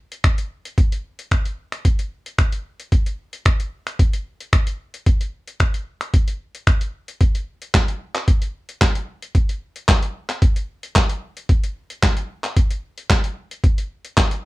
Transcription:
0.12 closed hi-hat medium
0.24 finger snap loud
0.24 kick loud
0.24 closed hi-hat medium
0.38 closed hi-hat medium
0.65 closed hi-hat medium
0.78 kick loud
0.78 closed hi-hat medium
0.92 closed hi-hat medium
1.19 closed hi-hat medium
1.31 finger snap loud
1.31 kick loud
1.31 closed hi-hat medium
1.45 closed hi-hat medium
1.72 finger snap medium
1.72 closed hi-hat medium
1.85 kick loud
1.85 closed hi-hat medium
1.99 closed hi-hat medium
2.26 closed hi-hat medium
2.38 finger snap loud
2.38 kick loud
2.38 closed hi-hat medium
2.52 closed hi-hat medium
2.80 closed hi-hat medium
2.92 kick loud
2.92 closed hi-hat medium
3.06 closed hi-hat medium
3.33 closed hi-hat medium
3.45 finger snap loud
3.45 kick loud
3.45 closed hi-hat medium
3.60 closed hi-hat medium
3.87 finger snap medium
3.87 closed hi-hat medium
3.99 kick loud
3.99 closed hi-hat medium
4.13 closed hi-hat medium
4.40 closed hi-hat medium
4.53 finger snap loud
4.53 kick loud
4.53 closed hi-hat medium
4.67 closed hi-hat medium
4.94 closed hi-hat medium
5.06 kick loud
5.06 closed hi-hat medium
5.21 closed hi-hat medium
5.48 closed hi-hat medium
5.60 finger snap loud
5.60 kick loud
5.60 closed hi-hat medium
5.74 closed hi-hat medium
6.01 finger snap medium
6.01 closed hi-hat medium
6.14 kick loud
6.14 closed hi-hat medium
6.28 closed hi-hat medium
6.55 closed hi-hat medium
6.67 finger snap loud
6.67 kick loud
6.67 closed hi-hat medium
6.81 closed hi-hat medium
7.08 closed hi-hat medium
7.21 kick loud
7.21 closed hi-hat medium
7.35 closed hi-hat medium
7.62 closed hi-hat medium
7.74 kick loud
7.74 snare medium
7.74 clap loud
7.74 closed hi-hat medium
7.88 closed hi-hat medium
8.15 clap medium
8.15 closed hi-hat medium
8.28 kick loud
8.28 closed hi-hat medium
8.42 closed hi-hat medium
8.69 closed hi-hat medium
8.81 kick loud
8.81 snare medium
8.81 clap loud
8.81 closed hi-hat medium
8.95 closed hi-hat medium
9.22 closed hi-hat medium
9.35 kick loud
9.35 closed hi-hat medium
9.49 closed hi-hat medium
9.76 closed hi-hat medium
9.88 kick loud
9.88 snare medium
9.88 clap loud
9.88 closed hi-hat medium
10.03 closed hi-hat medium
10.29 clap medium
10.29 closed hi-hat medium
10.42 kick loud
10.42 closed hi-hat medium
10.56 closed hi-hat medium
10.83 closed hi-hat medium
10.95 kick loud
10.95 snare medium
10.95 clap loud
10.95 closed hi-hat medium
11.09 closed hi-hat medium
11.37 closed hi-hat medium
11.49 kick loud
11.49 closed hi-hat medium
11.64 closed hi-hat medium
11.90 closed hi-hat medium
12.03 kick loud
12.03 snare medium
12.03 clap loud
12.03 closed hi-hat medium
12.17 closed hi-hat medium
12.44 clap medium
12.44 closed hi-hat medium
12.57 kick loud
12.57 closed hi-hat medium
12.71 closed hi-hat medium
12.98 closed hi-hat medium
13.10 kick loud
13.10 snare medium
13.10 clap loud
13.10 closed hi-hat medium
13.24 closed hi-hat medium
13.51 closed hi-hat medium
13.64 kick loud
13.64 closed hi-hat medium
13.78 closed hi-hat medium
14.05 closed hi-hat medium
14.17 kick loud
14.17 snare medium
14.17 clap loud
14.17 closed hi-hat medium
14.31 closed hi-hat medium

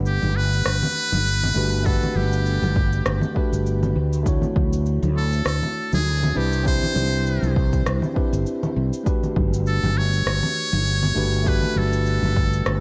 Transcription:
0.00 0.18 G1 medium
0.00 1.51 A3 medium
0.00 1.52 D4 medium
0.00 1.53 G4 medium
0.00 1.54 B4 medium
0.00 1.53 F#5 medium
0.06 0.38 G4 medium
0.06 shaker soft
0.22 0.62 G1 medium
0.22 high conga medium
0.22 shaker soft
0.36 1.87 B4 loud
0.53 shaker medium
0.66 0.80 G1 medium
0.66 cross-stick medium
0.66 shaker soft
0.83 low conga medium
0.83 shaker soft
1.12 1.52 G1 medium
1.12 high conga medium
1.12 shaker medium
1.26 shaker medium
1.43 low conga medium
1.43 shaker soft
1.55 1.98 G1 medium
1.55 1.82 A3 medium
1.55 1.83 D4 medium
1.55 1.83 F#4 medium
1.55 1.83 G4 medium
1.55 1.84 B4 medium
1.73 shaker medium
1.83 3.31 A3 medium
1.83 3.32 D4 medium
1.83 2.18 A4 medium
1.83 3.33 F#5 medium
1.83 kick loud
1.83 shaker soft
1.87 3.34 G4 medium
1.87 3.34 B4 medium
2.03 low conga medium
2.03 shaker soft
2.15 2.58 G1 medium
2.15 3.36 G4 medium
2.15 high conga medium
2.33 shaker medium
2.46 shaker medium
2.62 3.02 G1 medium
2.62 high conga medium
2.62 shaker soft
2.76 kick loud
2.93 shaker medium
3.06 3.20 G1 medium
3.06 cross-stick medium
3.06 shaker medium
3.21 low conga medium
3.21 shaker soft
3.34 3.58 A3 medium
3.34 3.58 D4 medium
3.34 3.59 F#4 medium
3.34 3.59 G4 medium
3.34 3.59 B4 medium
3.34 kick loud
3.52 3.92 G1 medium
3.52 shaker medium
3.66 shaker soft
3.83 low conga medium
3.83 shaker soft
3.96 4.38 D2 medium
4.13 shaker medium
4.23 6.31 A3 medium
4.23 6.32 D4 medium
4.23 6.33 E4 medium
4.23 kick loud
4.23 shaker medium
4.27 6.33 F#4 medium
4.27 6.34 C#5 medium
4.42 low conga medium
4.42 shaker soft
4.56 4.98 D2 medium
4.56 kick loud
4.56 high conga medium
4.73 shaker medium
4.86 shaker medium
5.02 5.42 D2 medium
5.02 high conga medium
5.02 shaker soft
5.17 5.45 A4 medium
5.33 shaker medium
5.45 5.60 D2 medium
5.45 5.90 A4 medium
5.45 cross-stick medium
5.45 shaker medium
5.62 low conga medium
5.62 shaker soft
5.92 6.32 D2 medium
5.92 6.39 G#4 loud
5.92 high conga medium
5.92 shaker medium
6.06 shaker medium
6.23 low conga medium
6.23 shaker soft
6.35 6.78 C2 medium
6.35 6.62 C4 medium
6.35 6.62 D4 medium
6.35 6.63 E4 medium
6.35 6.63 G4 medium
6.35 6.67 G4 medium
6.35 6.63 B4 medium
6.53 shaker medium
6.63 8.12 C4 medium
6.63 8.12 D4 medium
6.63 8.13 E4 medium
6.63 kick loud
6.63 shaker soft
6.67 8.14 G4 medium
6.67 7.53 C5 loud
6.67 8.14 C5 medium
6.83 low conga medium
6.83 shaker soft
6.95 7.38 C2 medium
6.95 high conga medium
7.13 shaker medium
7.26 shaker medium
7.42 7.82 C2 medium
7.42 high conga medium
7.42 shaker soft
7.56 kick loud
7.73 kick medium
7.73 shaker medium
7.86 8.00 C2 medium
7.86 cross-stick medium
7.86 shaker medium
8.02 low conga medium
8.02 shaker soft
8.14 8.38 C4 medium
8.14 8.38 D4 medium
8.14 8.39 E4 medium
8.14 8.39 G4 medium
8.14 8.39 B4 medium
8.14 kick loud
8.33 8.44 G1 medium
8.33 shaker medium
8.46 shaker medium
8.63 low conga medium
8.63 shaker soft
8.76 8.90 C2 medium
8.93 shaker medium
9.04 11.12 A3 medium
9.04 11.12 D4 medium
9.04 11.13 F#4 medium
9.04 kick loud
9.04 shaker soft
9.08 11.14 G4 medium
9.08 11.15 B4 medium
9.23 low conga medium
9.23 shaker soft
9.36 9.78 G1 medium
9.36 kick loud
9.36 high conga medium
9.53 shaker medium
9.66 9.99 A4 medium
9.66 shaker soft
9.83 10.23 G1 medium
9.83 high conga medium
9.83 shaker soft
9.98 11.50 C#5 loud
10.13 shaker medium
10.26 10.40 G1 medium
10.26 cross-stick medium
10.26 shaker soft
10.43 low conga medium
10.43 shaker soft
10.73 11.12 G1 medium
10.73 high conga medium
10.73 shaker medium
10.87 shaker soft
11.03 low conga medium
11.03 shaker soft
11.15 11.58 G1 medium
11.15 11.42 A3 medium
11.15 11.43 D4 medium
11.15 11.43 F#4 medium
11.15 11.43 G4 medium
11.15 11.44 B4 medium
11.33 shaker medium
11.44 12.80 A3 medium
11.44 12.80 D4 medium
11.44 12.80 F#4 medium
11.44 kick loud
11.44 shaker soft
11.48 12.80 G4 medium
11.48 11.80 B4 medium
11.48 12.80 B4 medium
11.62 low conga medium
11.62 shaker soft
11.76 12.18 G1 medium
11.76 12.80 A4 medium
11.76 high conga medium
11.93 shaker medium
12.06 shaker medium
12.22 12.62 G1 medium
12.22 high conga medium
12.22 shaker soft
12.36 kick medium
12.53 shaker medium
12.66 12.80 G1 medium
12.66 cross-stick medium
12.66 shaker soft

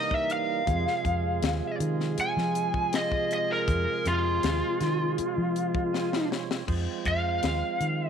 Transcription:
0.00 0.69 C3 medium
0.00 0.62 E3 medium
0.00 0.63 G3 medium
0.00 0.63 A#3 medium
0.00 0.64 D#4 medium
0.00 0.64 A#4 medium
0.00 0.14 D#5 medium
0.11 0.31 E5 medium
0.11 kick medium
0.30 1.77 F5 medium
0.30 closed hi-hat medium
0.66 0.85 F2 loud
0.66 6.64 C3 medium
0.66 6.63 F3 medium
0.66 6.64 G#3 medium
0.66 6.64 F4 medium
0.66 6.65 F4 medium
0.66 6.64 G#4 medium
0.66 kick loud
0.66 closed hi-hat medium
0.87 snare soft
1.05 1.40 F2 medium
1.05 kick medium
1.05 closed hi-hat medium
1.42 1.60 D#2 medium
1.42 snare loud
1.42 closed hi-hat medium
1.80 2.15 D#3 loud
1.80 closed hi-hat medium
2.00 snare soft
2.18 2.92 G#5 loud
2.18 muted fingered electric bass stroke soft
2.18 closed hi-hat medium
2.37 3.69 F3 medium
2.37 snare soft
2.55 closed hi-hat medium
2.74 kick medium
2.93 3.31 D#5 medium
2.93 snare loud
2.93 closed hi-hat medium
3.12 kick medium
3.31 3.50 D#5 medium
3.31 closed hi-hat medium
3.52 4.05 A#4 loud
3.68 3.85 F2 loud
3.68 kick loud
3.68 closed hi-hat medium
4.06 4.40 F2 medium
4.06 6.28 F4 loud
4.06 closed hi-hat medium
4.43 4.61 D#2 medium
4.43 snare loud
4.43 closed hi-hat medium
4.81 5.15 D#3 loud
4.81 snare soft
4.81 closed hi-hat medium
5.18 muted fingered electric bass stroke soft
5.18 closed hi-hat medium
5.38 6.65 F3 loud
5.56 closed hi-hat medium
5.75 kick medium
5.93 6.10 G#5 medium
5.93 snare medium
6.12 6.29 F5 medium
6.12 snare medium
6.30 6.65 C#5 medium
6.30 snare medium
6.51 snare medium
6.67 6.86 F2 medium
6.67 8.10 F3 medium
6.67 8.10 G#3 medium
6.67 8.10 C4 medium
6.67 8.10 F4 medium
6.67 kick medium
6.67 crash medium
7.05 7.41 F2 medium
7.05 8.10 F5 medium
7.05 kick medium
7.05 closed hi-hat medium
7.43 7.61 D#2 medium
7.43 snare loud
7.43 closed hi-hat medium
7.81 8.10 D#3 medium
7.81 closed hi-hat medium

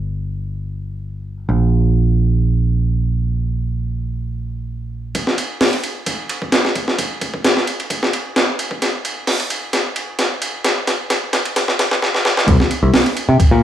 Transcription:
0.00 1.47 G1 medium
1.49 5.13 A#1 medium
5.15 kick loud
5.15 ride medium
5.27 snare soft
5.38 ride medium
5.61 snare loud
5.61 open hi-hat medium
5.73 ride soft
5.84 ride medium
6.06 kick loud
6.06 ride medium
6.29 ride medium
6.42 kick medium
6.52 snare loud
6.52 ride medium
6.65 snare soft
6.75 kick medium
6.75 ride medium
6.88 snare soft
6.98 kick loud
6.98 ride medium
7.21 kick medium
7.21 ride medium
7.34 kick medium
7.45 snare loud
7.45 ride medium
7.57 snare soft
7.67 ride medium
7.80 ride soft
7.90 kick loud
7.90 ride medium
8.03 snare medium
8.13 ride medium
8.36 snare loud
8.36 ride medium
8.59 ride medium
8.71 kick loud
8.82 snare soft
8.82 ride medium
9.05 ride medium
9.27 snare medium
9.27 open hi-hat medium
9.40 ride soft
9.50 ride medium
9.73 snare medium
9.73 ride medium
9.96 ride medium
10.19 snare medium
10.19 ride medium
10.42 ride medium
10.64 snare medium
10.64 ride medium
10.87 snare medium
10.87 ride medium
11.10 snare medium
11.10 ride medium
11.33 snare medium
11.33 ride medium
11.45 ride soft
11.56 snare medium
11.56 ride medium
11.68 snare medium
11.79 snare medium
11.79 ride medium
11.91 snare medium
12.02 snare medium
12.15 snare medium
12.25 snare medium
12.37 snare medium
12.48 12.56 C2 loud
12.48 kick loud
12.48 ride medium
12.60 snare soft
12.71 ride medium
12.83 12.90 C2 medium
12.94 snare loud
12.94 open hi-hat medium
13.06 ride soft
13.17 ride medium
13.29 13.36 C3 medium
13.40 muted picked electric bass stroke soft
13.40 kick loud
13.40 ride medium
13.51 13.63 A#2 loud

